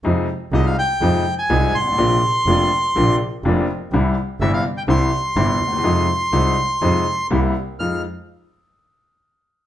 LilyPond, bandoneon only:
\new Staff \with { instrumentName = "Bandoneon" } { \time 4/4 \key f \dorian \tempo 4 = 124 r4 ees''16 f''16 g''4~ g''16 aes''8. c'''8~ | c'''2~ c'''8 r4. | r4 e''16 f''8 g''16 c'''2~ | c'''2. r4 |
f'''8 r2. r8 | }